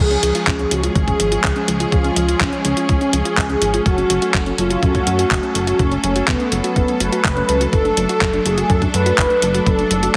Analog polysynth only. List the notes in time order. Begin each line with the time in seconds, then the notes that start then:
0.00 G#4
0.71 F#4
0.95 G#4
1.92 F4
2.16 F4
2.41 C#4
2.65 C#4
3.13 G#4
3.86 F#4
4.58 F4
4.83 F#4
5.79 C#4
6.04 C#4
6.28 B3
6.52 B3
7.00 B4
7.73 A4
8.46 G#4
8.70 A4
8.94 B4
9.67 A4